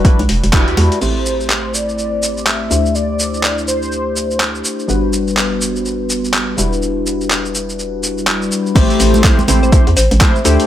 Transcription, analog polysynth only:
0.04 G3 D4 E4 F#4 B4
0.53 G3 D4 E4 F#4 B4
0.67 G3 D4 E4 F#4 B4
1.00 A3 C4 E4 G4 C5
2.70 A3 D4 E4 G4 C5
4.87 G3 B3 D4 F#4 B4
6.57 G3 D4 E4 F#4 B4
8.75 A3 C4 E4 G4 C5
9.23 A3 C4 E4 G4 C5
9.48 A3 C4 E4 G4 C5
9.72 A3 C4 E4 G4 C5
10.20 A3 C4 E4 G4 C5
10.44 A3 D4 E4 G4 C5

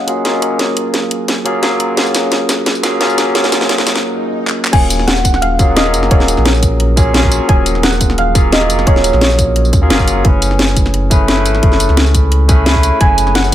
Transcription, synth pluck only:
Already playing: D#5
0.42 C#5
4.73 G#5
5.07 F#5
5.36 F#5
5.42 F5
5.77 D#5
6.11 C#5
6.46 A#4
7.49 G#5
7.84 F#5
8.19 F5
8.53 D#5
8.87 C#5
9.22 C#5
13.01 G#5
13.35 F#5

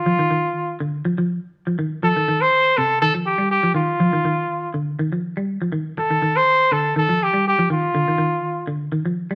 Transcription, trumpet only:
Already playing: F4
2.04 A4
2.41 C5
2.77 A4
3.02 A4
3.26 G4
3.51 G4
3.75 F4
5.98 A4
6.36 C5
6.72 A4
6.97 A4
7.23 G4
7.48 G4
7.72 F4

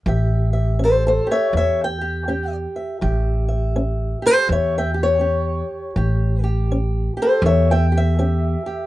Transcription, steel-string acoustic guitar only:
0.07 A2 G4 E5
0.53 E5
0.79 C#4
0.84 A4 C5
1.07 A4 C5
1.27 G4
1.31 C#5 E5
1.52 A2
1.57 C#5 E5
1.84 G5
2.01 G4
2.28 C#4 G4
2.76 E5
3.01 A2 G4 E5
3.48 E5
3.76 C#4
4.22 G4 A4
4.26 C5
4.48 A2
4.52 C#5 E5
4.78 E5 G5
4.94 G4
5.03 C#5
5.19 C#4 G4
5.96 A2 G4
6.44 G4
6.71 C#4
7.17 G4
7.22 A4 C5
7.45 A2 C#5 E5
7.71 E5 G5
7.92 G4
7.97 E5
8.19 C#4 G4
8.66 G4

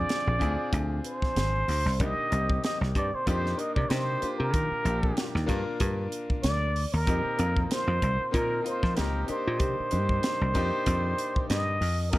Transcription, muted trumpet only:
Already playing: D5
1.05 C5
2.01 D#5
2.65 D#5
2.98 D5
3.15 C5
3.29 C5
3.59 D#5
3.75 D5
3.89 C5
4.38 A#4
6.43 D5
6.93 A#4
7.72 C5
8.35 A#4
8.67 C5
8.99 A#4
9.30 C5
11.49 D#5
12.10 A#4

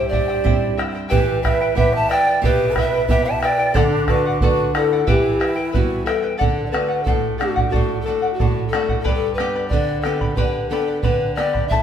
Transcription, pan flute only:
Already playing: C5
0.09 D5
1.09 B4
1.44 E5
1.77 E5
1.95 A5
2.10 G5
2.44 B4
2.79 E5
3.10 E5
3.24 A5
3.42 G5
3.75 A4
4.09 B4
4.41 B4
4.75 A4
5.09 G4
5.76 F#4
6.06 A4
6.37 A4
6.66 D5
6.71 B4
7.03 A4
7.37 F#4
7.69 F#4
8.01 A4
8.34 F#4
8.68 A4
9.00 A4
9.10 A4 B4
9.34 B4
9.68 D5
10.02 A4
10.35 B4
10.69 A4
11.02 B4
11.35 D5
11.68 E5

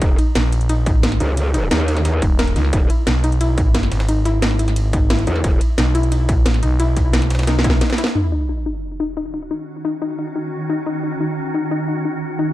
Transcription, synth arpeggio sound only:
0.02 D#4
0.19 D#4
0.36 D#4
0.70 D#4
0.86 D#4
1.03 D#4
1.20 D#4
1.54 D#4
1.71 D#4
1.88 D#4
2.05 D#4
2.22 D#4
2.39 A#4
2.56 D#4
2.73 D#4
2.90 E4
3.24 D#4
3.41 E4
3.58 D#4
3.75 E4
4.09 D#4
4.25 E4
4.42 D#4
4.59 E4
4.93 D#4
5.10 E4
5.27 D#4
5.44 E4
5.78 D#4
5.95 E4
6.12 D#4
6.29 E4
6.63 D#4
6.80 E4
6.97 D#4
7.13 E4
7.47 D#4
7.64 E4
7.81 D#4
7.98 E4
8.15 D#4
8.32 D#4
8.49 D#4
8.66 D#4
9.00 D#4
9.17 D#4
9.34 D#4
9.51 D#4
9.85 D#4
10.02 D#4
10.19 D#4
10.36 D#4
10.70 D#4
10.86 D#4
11.03 D#4
11.20 D#4
11.54 D#4
11.71 D#4
11.88 D#4
12.05 D#4
12.39 D#4

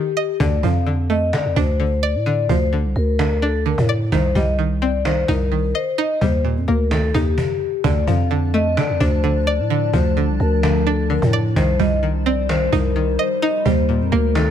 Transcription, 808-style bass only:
0.40 D2
0.63 F2
1.33 D3
1.45 F2
1.56 D2
2.15 A2
2.49 D2
2.85 C2
2.96 D2
3.78 A2
4.12 C2
4.35 C2
5.28 C2
6.21 D#2
6.57 F2
6.68 D2
7.14 D#2
7.84 D2
8.07 F2
8.77 D3
8.90 F2
9.00 D2
9.59 A2
9.93 D2
10.29 C2
10.40 D2
11.22 A2
11.56 C2
11.80 C2
12.73 C2
13.66 D#2
14.01 F2
14.12 D2

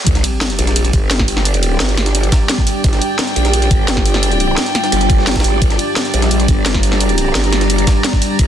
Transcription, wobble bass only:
0.07 G1
0.59 A#1
0.93 G1
1.80 G1
2.84 G1
3.36 A#1
3.71 G1
4.92 G1
5.44 G#1
5.62 G1
6.14 A#1
6.48 G1
7.35 G1
8.39 G1

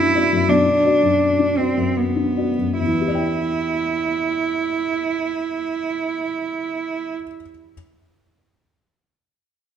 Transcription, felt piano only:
Already playing: B1 F#2 F#4 D5
0.00 D4
0.15 F#4 D5
0.33 F#2
0.48 B1
0.66 D4
0.85 F#4 D5
1.03 F#2
1.39 D4
1.59 F#4 D5
1.77 F#2
2.16 D4
2.37 F#4 D5
2.59 F#2
2.80 E2
2.87 E3
2.93 B3
3.01 G4
3.08 D5
3.15 G5

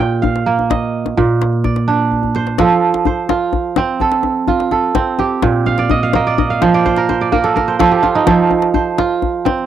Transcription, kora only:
Already playing: A#2 G4
0.00 G5
0.22 F5
0.46 A#3
0.70 D#5
1.17 A#2
1.64 D5
1.88 D4
2.36 C5
2.60 F3 A4
3.06 C5
3.29 F4
3.78 C4
4.01 A4
4.48 F4
4.72 A4
4.95 C4
5.19 G4
5.43 A#2
5.66 F5
5.79 D5
5.91 D#5
6.03 F5
6.15 A#3 D#5
6.27 D5
6.38 D#5
6.50 F5
6.62 F3 C5
6.74 D5
6.86 C5
6.97 A#4
7.09 C5
7.21 D5
7.32 A#3 A#4
7.44 A4
7.56 A#4
7.68 C5
7.79 F3 A4
7.91 G4
8.03 F4
8.15 D#4
8.27 F3 A4
8.74 C5
8.98 F4
9.45 C4

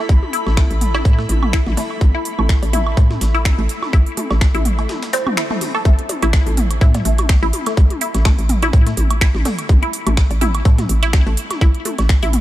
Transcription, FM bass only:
0.09 A1
0.47 A1
0.71 A1
1.05 A2
1.29 A1
1.67 A1
2.01 A1
2.39 A1
2.63 A1
2.97 A2
3.21 A1
3.59 A1
3.93 A1
4.31 A1
4.55 A1
5.85 A1
6.23 A1
6.46 A1
6.81 A2
7.05 A1
7.43 A1
7.77 A1
8.15 A1
8.39 A1
8.73 A2
8.97 A1
9.35 A1
9.69 A1
10.07 A1
10.31 A1
10.65 A2
10.89 A1
11.27 A1
11.61 A1
11.99 A1
12.23 A1

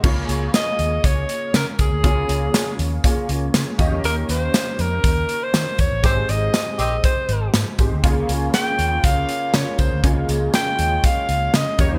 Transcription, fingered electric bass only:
0.04 C#2
0.29 C#2
0.79 D#2
1.04 C#2
1.54 C#3
1.79 C#2
1.91 D2
2.04 C#2
2.29 C#2
2.79 D#2
3.29 C#2
3.54 C#3
3.79 D#2
3.91 E2
4.04 D#2
4.29 D#2
4.79 F2
5.04 D#2
5.54 D#3
5.79 D#2
5.91 A1
6.04 G#1
6.29 G#1
6.79 A#1
7.29 G#1
7.54 G#2
7.79 G#1
7.91 D2
8.04 C#2
8.29 C#2
8.79 D#2
9.04 C#2
9.54 C#3
9.79 C#2
9.91 D2
10.04 C#2
10.29 C#2
10.79 D#2
11.29 C#2
11.54 C#3
11.79 D#2
11.91 E2

